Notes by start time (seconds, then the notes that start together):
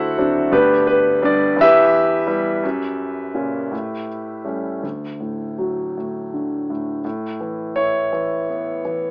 Already playing: D2 E4 F#4 A4 C5 E5 F#5
0.18 F#3 C4 D4
0.52 D2 B3 D4 G4 B4
0.87 B3 B4
1.22 G3 B3 D4 D5
1.56 E2
1.61 E4 G4 B4 E5
2.27 G3 B3 E4
2.63 F#2
3.34 A#2 C#3 C#4
3.72 A2
4.45 G3 A3 C#4
4.83 D2
5.20 A2
5.58 F#3
5.97 A2
6.34 D3
6.70 A2
7.05 A2
7.41 E3
7.76 E4 C#5
8.13 E3
8.50 B3
8.85 E3